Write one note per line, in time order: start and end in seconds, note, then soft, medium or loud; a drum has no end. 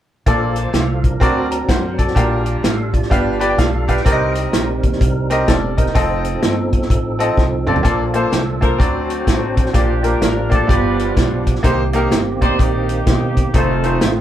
0.26 0.67 A#1 medium
0.26 1.00 A#2 medium
0.26 1.20 F3 medium
0.26 0.84 A#3 medium
0.26 1.20 A#3 medium
0.26 0.56 D4 medium
0.26 0.84 F4 medium
0.26 0.56 A4 medium
0.26 0.85 A4 medium
0.26 0.85 D5 medium
0.26 kick loud
0.26 closed hi-hat medium
0.56 0.74 C5 soft
0.56 0.74 A5 medium
0.56 closed hi-hat medium
0.73 1.14 C2 medium
0.73 1.03 A4 medium
0.73 1.03 F5 medium
0.73 snare loud
0.73 closed hi-hat medium
1.04 1.21 D4 soft
1.04 1.21 A#4 medium
1.04 kick medium
1.04 closed hi-hat soft
1.20 1.62 D2 medium
1.20 1.94 D3 medium
1.20 2.15 F#3 medium
1.20 1.45 C4 medium
1.20 2.15 C4 medium
1.20 1.68 D4 medium
1.20 1.45 F#4 medium
1.20 1.45 A#4 medium
1.20 1.68 A#4 medium
1.20 1.46 D5 medium
1.20 kick loud
1.20 closed hi-hat medium
1.51 1.68 A#5 medium
1.51 closed hi-hat medium
1.69 2.09 F#2 medium
1.69 1.98 D4 soft
1.69 1.97 A#4 medium
1.69 1.98 C5 medium
1.69 1.97 F#5 medium
1.69 kick medium
1.69 snare loud
1.69 closed hi-hat medium
1.98 2.44 F#4 medium
1.98 2.44 A4 medium
1.98 2.43 D5 medium
1.98 2.44 D5 medium
1.98 kick medium
1.98 closed hi-hat medium
2.07 snare soft
2.15 2.56 A#1 medium
2.15 2.89 A#2 medium
2.15 3.09 G3 medium
2.15 2.73 D4 medium
2.15 3.08 D4 medium
2.15 2.45 F4 medium
2.15 2.74 G4 medium
2.15 2.45 A#4 medium
2.15 2.74 A#4 medium
2.15 2.74 F5 medium
2.15 kick loud
2.15 closed hi-hat medium
2.46 2.63 F4 soft
2.46 2.63 D5 medium
2.46 closed hi-hat medium
2.63 3.04 A1 medium
2.63 2.92 A4 soft
2.63 2.92 F5 medium
2.63 snare loud
2.63 closed hi-hat medium
2.93 3.08 F4 soft
2.93 3.38 D5 medium
2.93 kick medium
2.93 closed hi-hat soft
3.02 snare soft
3.09 3.51 G1 medium
3.09 3.84 G2 medium
3.09 4.03 G3 medium
3.09 4.03 D4 medium
3.09 3.34 D4 medium
3.09 4.03 F4 medium
3.09 3.35 G4 medium
3.09 3.57 B4 medium
3.09 3.35 B4 medium
3.09 3.35 F5 medium
3.09 kick loud
3.09 closed hi-hat medium
3.39 3.63 D4 medium
3.39 3.63 G4 medium
3.39 3.63 B4 medium
3.39 3.64 D5 medium
3.39 3.49 B5 medium
3.39 closed hi-hat medium
3.49 3.58 G5 medium
3.58 3.99 B1 medium
3.58 3.87 A4 medium
3.58 3.88 F5 medium
3.58 3.87 F5 medium
3.58 kick medium
3.58 snare medium
3.58 closed hi-hat medium
3.88 3.98 D4 medium
3.88 3.98 G4 medium
3.88 3.99 B4 medium
3.88 4.34 B4 soft
3.88 3.99 F5 medium
3.88 4.33 G5 medium
3.88 kick medium
3.88 closed hi-hat medium
3.97 snare soft
4.05 4.46 C2 medium
4.05 4.79 C3 medium
4.05 5.92 G3 medium
4.05 4.63 C4 medium
4.05 5.92 C4 medium
4.05 5.46 D#4 medium
4.05 4.63 G4 medium
4.05 4.64 A#4 medium
4.05 5.46 A#4 medium
4.05 4.13 D5 medium
4.05 kick loud
4.05 closed hi-hat medium
4.12 4.67 D#5 medium
4.35 closed hi-hat medium
4.53 4.78 A#1 medium
4.53 snare loud
4.53 closed hi-hat medium
4.83 4.98 D#2 medium
4.83 kick medium
4.83 closed hi-hat medium
4.92 snare soft
5.01 5.41 C2 medium
5.01 kick loud
5.01 closed hi-hat medium
5.30 5.53 C4 medium
5.30 5.53 G4 medium
5.30 5.48 A#4 medium
5.30 5.49 D#5 medium
5.30 closed hi-hat medium
5.48 5.88 E1 medium
5.48 5.77 D4 medium
5.48 5.76 A4 medium
5.48 5.76 A#4 medium
5.48 5.76 D5 medium
5.48 kick medium
5.48 snare loud
5.48 closed hi-hat medium
5.78 5.96 D#4 soft
5.78 6.23 A#4 soft
5.78 6.23 C5 medium
5.78 5.95 D#5 medium
5.78 kick medium
5.78 closed hi-hat medium
5.86 snare soft
5.95 6.35 F1 medium
5.95 7.82 F3 medium
5.95 6.53 C4 medium
5.95 7.82 C4 medium
5.95 7.82 D#4 medium
5.95 6.53 F4 medium
5.95 6.53 A4 medium
5.95 7.82 A4 medium
5.95 6.53 D#5 medium
5.95 kick medium
5.95 closed hi-hat medium
6.25 closed hi-hat medium
6.42 6.83 G1 medium
6.42 snare loud
6.42 closed hi-hat medium
6.73 kick medium
6.73 closed hi-hat medium
6.82 snare soft
6.90 7.30 A1 medium
6.90 kick medium
6.90 closed hi-hat medium
7.19 7.42 C4 medium
7.19 7.42 F4 medium
7.19 7.43 A4 medium
7.19 7.43 D#5 medium
7.19 closed hi-hat medium
7.37 7.62 C2 medium
7.37 kick medium
7.37 snare soft
7.67 7.82 F1 medium
7.67 7.77 C4 medium
7.67 7.77 F4 medium
7.67 7.78 A4 medium
7.67 7.78 D5 medium
7.67 mid tom medium
7.76 floor tom medium
7.83 8.25 A#1 loud
7.83 8.57 A#2 medium
7.83 8.78 F3 medium
7.83 8.01 A#3 medium
7.83 8.78 A#3 medium
7.83 7.92 C4 medium
7.83 8.02 F4 medium
7.83 8.02 A4 medium
7.83 8.78 A4 medium
7.83 8.02 D5 medium
7.83 kick loud
7.83 closed hi-hat medium
7.91 8.78 D4 medium
8.14 8.37 A#3 medium
8.14 8.37 F4 medium
8.14 8.37 A4 medium
8.14 8.38 C5 medium
8.14 closed hi-hat medium
8.32 8.72 C2 medium
8.32 snare loud
8.32 closed hi-hat medium
8.61 8.79 A#3 medium
8.61 8.79 F4 medium
8.61 8.80 A4 medium
8.61 8.79 A#4 medium
8.61 8.80 C5 medium
8.61 kick medium
8.61 closed hi-hat soft
8.78 9.20 D2 medium
8.78 9.52 D3 medium
8.78 9.73 F#3 medium
8.78 9.71 A3 medium
8.78 9.60 C4 medium
8.78 9.72 C4 medium
8.78 9.71 C4 medium
8.78 9.72 D4 medium
8.78 9.60 F#4 medium
8.78 9.70 F#4 medium
8.78 9.72 C5 medium
8.78 9.61 D5 medium
8.78 9.60 A#5 medium
8.78 kick medium
8.78 closed hi-hat medium
9.10 closed hi-hat medium
9.27 9.67 A1 medium
9.27 kick medium
9.27 snare medium
9.27 closed hi-hat medium
9.57 kick medium
9.57 closed hi-hat medium
9.66 snare soft
9.73 10.15 A#1 medium
9.73 10.47 A#2 medium
9.73 10.67 F3 medium
9.73 9.91 A#3 medium
9.73 10.67 A#3 soft
9.73 10.68 D4 medium
9.73 10.65 D4 medium
9.73 9.92 F4 medium
9.73 10.67 G4 medium
9.73 10.22 G4 medium
9.73 9.92 G4 medium
9.73 9.92 D5 medium
9.73 kick medium
9.73 closed hi-hat medium
10.03 10.26 A#3 medium
10.03 10.26 F4 medium
10.03 10.27 G4 medium
10.03 10.27 A#4 medium
10.03 closed hi-hat medium
10.21 10.62 A1 medium
10.21 10.50 A#4 medium
10.21 snare loud
10.21 closed hi-hat medium
10.50 10.68 A#3 medium
10.50 10.66 F4 medium
10.50 10.67 G4 medium
10.50 10.68 A4 medium
10.50 10.68 D5 medium
10.50 kick medium
10.50 closed hi-hat medium
10.67 11.10 G1 medium
10.67 11.42 G2 medium
10.67 11.62 F3 medium
10.67 10.76 A3 soft
10.67 11.49 B3 medium
10.67 11.62 D4 medium
10.67 11.61 D4 medium
10.67 11.49 F4 medium
10.67 11.61 F4 medium
10.67 11.50 G4 medium
10.67 11.62 G4 medium
10.67 11.50 D5 medium
10.67 kick loud
10.67 closed hi-hat medium
10.71 11.65 B3 soft
10.71 11.18 B4 medium
10.99 closed hi-hat medium
11.17 11.57 B1 medium
11.17 kick medium
11.17 snare medium
11.17 closed hi-hat medium
11.47 kick medium
11.47 closed hi-hat medium
11.55 snare soft
11.63 12.04 C2 loud
11.63 12.38 C3 medium
11.63 11.72 D3 medium
11.63 11.81 A#3 medium
11.63 13.50 A#3 medium
11.63 13.51 C4 medium
11.63 11.81 D#4 medium
11.63 13.50 G4 medium
11.63 11.82 G4 medium
11.63 11.82 C5 medium
11.63 kick loud
11.63 closed hi-hat medium
11.71 13.53 D#3 medium
11.93 12.17 A#3 medium
11.93 12.17 D#4 medium
11.93 12.17 G4 medium
11.93 12.18 A#4 medium
11.93 closed hi-hat medium
12.11 12.51 G1 medium
12.11 snare loud
12.11 closed hi-hat medium
12.41 12.95 A#3 medium
12.41 12.95 D#4 medium
12.41 12.95 G4 medium
12.41 12.58 C5 medium
12.41 12.96 D5 medium
12.41 kick medium
12.41 closed hi-hat medium
12.59 13.00 A#1 medium
12.59 13.50 A#3 medium
12.59 13.50 D#4 medium
12.59 13.54 G4 medium
12.59 kick loud
12.59 closed hi-hat medium
12.89 closed hi-hat medium
13.07 13.47 E1 medium
13.07 kick medium
13.07 snare medium
13.07 closed hi-hat medium
13.37 kick medium
13.37 closed hi-hat medium
13.54 13.94 F1 loud
13.54 14.21 D#3 medium
13.54 13.71 A3 medium
13.54 14.21 A3 medium
13.54 14.01 C4 medium
13.54 14.21 C4 soft
13.54 13.72 D#4 medium
13.54 13.62 D#4 soft
13.54 14.21 D#4 medium
13.54 13.72 F4 medium
13.54 14.02 A4 medium
13.54 13.73 C5 medium
13.54 kick loud
13.54 closed hi-hat medium
13.61 14.21 F4 medium
13.83 14.07 A3 medium
13.83 14.07 D#4 medium
13.83 14.07 F4 medium
13.83 14.08 C5 medium
13.83 closed hi-hat medium
14.01 14.21 A1 medium
14.01 14.21 A3 medium
14.01 14.21 C4 medium
14.01 14.21 F4 medium
14.01 snare loud
14.01 closed hi-hat medium